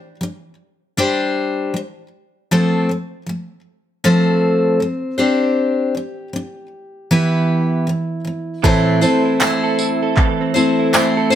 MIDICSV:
0, 0, Header, 1, 5, 480
1, 0, Start_track
1, 0, Key_signature, 0, "minor"
1, 0, Tempo, 766284
1, 1571, Time_signature, 4, 2, 24, 8
1, 7110, End_track
2, 0, Start_track
2, 0, Title_t, "Upright piano"
2, 0, Program_c, 0, 0
2, 5410, Note_on_c, 0, 64, 72
2, 5415, Note_on_c, 0, 69, 61
2, 5424, Note_on_c, 0, 72, 65
2, 5432, Note_on_c, 0, 81, 73
2, 5513, Control_c, 0, 64, 127
2, 7110, Note_off_c, 0, 64, 0
2, 7110, Note_off_c, 0, 69, 0
2, 7110, Note_off_c, 0, 72, 0
2, 7110, Note_off_c, 0, 81, 0
2, 7110, End_track
3, 0, Start_track
3, 0, Title_t, "Clean electric guitar"
3, 0, Program_c, 1, 27
3, 5409, Note_on_c, 1, 52, 83
3, 5412, Note_on_c, 1, 69, 67
3, 5559, Note_on_c, 1, 60, 46
3, 5643, Note_off_c, 1, 69, 0
3, 5651, Note_on_c, 1, 69, 67
3, 5794, Note_on_c, 1, 64, 61
3, 5887, Note_off_c, 1, 60, 0
3, 5890, Note_on_c, 1, 60, 57
3, 6028, Note_off_c, 1, 69, 0
3, 6035, Note_on_c, 1, 69, 62
3, 6127, Note_off_c, 1, 64, 0
3, 6135, Note_on_c, 1, 64, 58
3, 6273, Note_off_c, 1, 69, 0
3, 6280, Note_on_c, 1, 69, 62
3, 6371, Note_off_c, 1, 52, 0
3, 6374, Note_off_c, 1, 69, 0
3, 6379, Note_on_c, 1, 52, 81
3, 6383, Note_on_c, 1, 69, 65
3, 6518, Note_off_c, 1, 60, 0
3, 6521, Note_on_c, 1, 60, 58
3, 6608, Note_off_c, 1, 69, 0
3, 6615, Note_on_c, 1, 69, 58
3, 6752, Note_off_c, 1, 64, 0
3, 6760, Note_on_c, 1, 64, 56
3, 6857, Note_off_c, 1, 60, 0
3, 6860, Note_on_c, 1, 60, 56
3, 6991, Note_off_c, 1, 69, 0
3, 6999, Note_on_c, 1, 69, 71
3, 7089, Note_off_c, 1, 64, 0
3, 7110, Note_off_c, 1, 52, 0
3, 7110, Note_off_c, 1, 60, 0
3, 7110, Note_off_c, 1, 69, 0
3, 7110, End_track
4, 0, Start_track
4, 0, Title_t, "Steel-string acoustic guitar"
4, 0, Program_c, 2, 25
4, 0, Note_on_c, 2, 55, 45
4, 0, Note_on_c, 2, 62, 50
4, 91, Note_off_c, 2, 55, 0
4, 100, Note_off_c, 2, 62, 0
4, 130, Note_on_c, 2, 55, 56
4, 145, Note_on_c, 2, 62, 62
4, 333, Note_off_c, 2, 55, 0
4, 340, Note_off_c, 2, 62, 0
4, 610, Note_on_c, 2, 55, 71
4, 614, Note_on_c, 2, 62, 81
4, 619, Note_on_c, 2, 67, 78
4, 620, Note_on_c, 2, 72, 84
4, 1081, Note_off_c, 2, 55, 0
4, 1089, Note_on_c, 2, 55, 53
4, 1093, Note_off_c, 2, 62, 0
4, 1095, Note_off_c, 2, 67, 0
4, 1105, Note_on_c, 2, 62, 61
4, 1124, Note_off_c, 2, 72, 0
4, 1292, Note_off_c, 2, 55, 0
4, 1300, Note_off_c, 2, 62, 0
4, 1574, Note_on_c, 2, 53, 67
4, 1576, Note_on_c, 2, 57, 69
4, 1578, Note_on_c, 2, 60, 74
4, 1582, Note_on_c, 2, 72, 81
4, 1583, Note_on_c, 2, 69, 71
4, 1804, Note_off_c, 2, 53, 0
4, 1811, Note_on_c, 2, 53, 43
4, 1813, Note_off_c, 2, 57, 0
4, 1815, Note_off_c, 2, 60, 0
4, 1817, Note_off_c, 2, 69, 0
4, 1817, Note_off_c, 2, 72, 0
4, 1824, Note_on_c, 2, 57, 53
4, 2013, Note_off_c, 2, 53, 0
4, 2019, Note_off_c, 2, 57, 0
4, 2045, Note_on_c, 2, 53, 52
4, 2062, Note_on_c, 2, 57, 60
4, 2250, Note_off_c, 2, 53, 0
4, 2258, Note_off_c, 2, 57, 0
4, 2531, Note_on_c, 2, 53, 79
4, 2533, Note_on_c, 2, 57, 69
4, 2533, Note_on_c, 2, 60, 78
4, 2537, Note_on_c, 2, 69, 85
4, 2538, Note_on_c, 2, 72, 88
4, 3000, Note_off_c, 2, 53, 0
4, 3007, Note_on_c, 2, 53, 51
4, 3012, Note_off_c, 2, 57, 0
4, 3014, Note_off_c, 2, 69, 0
4, 3021, Note_on_c, 2, 57, 65
4, 3211, Note_off_c, 2, 53, 0
4, 3218, Note_off_c, 2, 57, 0
4, 3241, Note_off_c, 2, 72, 0
4, 3243, Note_on_c, 2, 72, 60
4, 3249, Note_off_c, 2, 60, 0
4, 3249, Note_on_c, 2, 67, 60
4, 3252, Note_on_c, 2, 62, 53
4, 3256, Note_on_c, 2, 60, 61
4, 3717, Note_off_c, 2, 60, 0
4, 3725, Note_on_c, 2, 60, 43
4, 3728, Note_off_c, 2, 72, 0
4, 3732, Note_off_c, 2, 62, 0
4, 3740, Note_on_c, 2, 62, 52
4, 3930, Note_off_c, 2, 60, 0
4, 3938, Note_off_c, 2, 62, 0
4, 3966, Note_on_c, 2, 60, 54
4, 3983, Note_on_c, 2, 62, 67
4, 4171, Note_off_c, 2, 60, 0
4, 4179, Note_off_c, 2, 62, 0
4, 4452, Note_on_c, 2, 52, 77
4, 4453, Note_on_c, 2, 59, 77
4, 4458, Note_on_c, 2, 64, 86
4, 4459, Note_off_c, 2, 67, 0
4, 4461, Note_on_c, 2, 67, 72
4, 4463, Note_on_c, 2, 71, 78
4, 4926, Note_off_c, 2, 52, 0
4, 4929, Note_on_c, 2, 52, 54
4, 4933, Note_off_c, 2, 59, 0
4, 4937, Note_off_c, 2, 67, 0
4, 4938, Note_off_c, 2, 71, 0
4, 4943, Note_on_c, 2, 59, 62
4, 5132, Note_off_c, 2, 52, 0
4, 5139, Note_off_c, 2, 59, 0
4, 5165, Note_on_c, 2, 52, 45
4, 5182, Note_on_c, 2, 59, 47
4, 5370, Note_off_c, 2, 52, 0
4, 5379, Note_off_c, 2, 59, 0
4, 5411, Note_on_c, 2, 45, 76
4, 5412, Note_on_c, 2, 52, 75
4, 5414, Note_off_c, 2, 64, 0
4, 5415, Note_on_c, 2, 57, 74
4, 5416, Note_on_c, 2, 60, 77
4, 5419, Note_on_c, 2, 64, 82
4, 5419, Note_on_c, 2, 72, 82
4, 5639, Note_off_c, 2, 72, 0
4, 5642, Note_off_c, 2, 64, 0
4, 5646, Note_on_c, 2, 72, 55
4, 5649, Note_off_c, 2, 60, 0
4, 5650, Note_on_c, 2, 64, 50
4, 5652, Note_off_c, 2, 45, 0
4, 5652, Note_off_c, 2, 52, 0
4, 5653, Note_off_c, 2, 57, 0
4, 5657, Note_on_c, 2, 60, 46
4, 5660, Note_on_c, 2, 57, 49
4, 5883, Note_off_c, 2, 57, 0
4, 5887, Note_off_c, 2, 60, 0
4, 5889, Note_off_c, 2, 72, 0
4, 5890, Note_on_c, 2, 57, 55
4, 5891, Note_off_c, 2, 64, 0
4, 5895, Note_on_c, 2, 60, 61
4, 5899, Note_on_c, 2, 64, 67
4, 5905, Note_on_c, 2, 72, 66
4, 6600, Note_off_c, 2, 72, 0
4, 6602, Note_on_c, 2, 72, 62
4, 6605, Note_off_c, 2, 64, 0
4, 6612, Note_off_c, 2, 57, 0
4, 6612, Note_off_c, 2, 60, 0
4, 6612, Note_on_c, 2, 64, 52
4, 6614, Note_on_c, 2, 60, 51
4, 6621, Note_on_c, 2, 57, 46
4, 6839, Note_off_c, 2, 57, 0
4, 6841, Note_off_c, 2, 60, 0
4, 6847, Note_off_c, 2, 72, 0
4, 6847, Note_on_c, 2, 57, 65
4, 6849, Note_off_c, 2, 64, 0
4, 6849, Note_on_c, 2, 60, 67
4, 6857, Note_on_c, 2, 64, 61
4, 6862, Note_on_c, 2, 72, 64
4, 7073, Note_off_c, 2, 72, 0
4, 7081, Note_on_c, 2, 72, 60
4, 7082, Note_off_c, 2, 64, 0
4, 7085, Note_off_c, 2, 60, 0
4, 7090, Note_off_c, 2, 57, 0
4, 7090, Note_on_c, 2, 64, 55
4, 7110, Note_off_c, 2, 64, 0
4, 7110, Note_off_c, 2, 72, 0
4, 7110, End_track
5, 0, Start_track
5, 0, Title_t, "Drums"
5, 5412, Note_on_c, 9, 36, 112
5, 5475, Note_off_c, 9, 36, 0
5, 5653, Note_on_c, 9, 54, 58
5, 5716, Note_off_c, 9, 54, 0
5, 5888, Note_on_c, 9, 54, 64
5, 5892, Note_on_c, 9, 39, 109
5, 5951, Note_off_c, 9, 54, 0
5, 5955, Note_off_c, 9, 39, 0
5, 6130, Note_on_c, 9, 54, 63
5, 6193, Note_off_c, 9, 54, 0
5, 6368, Note_on_c, 9, 39, 84
5, 6372, Note_on_c, 9, 36, 110
5, 6430, Note_off_c, 9, 39, 0
5, 6435, Note_off_c, 9, 36, 0
5, 6612, Note_on_c, 9, 54, 57
5, 6675, Note_off_c, 9, 54, 0
5, 6852, Note_on_c, 9, 39, 97
5, 6852, Note_on_c, 9, 54, 73
5, 6915, Note_off_c, 9, 39, 0
5, 6915, Note_off_c, 9, 54, 0
5, 7110, End_track
0, 0, End_of_file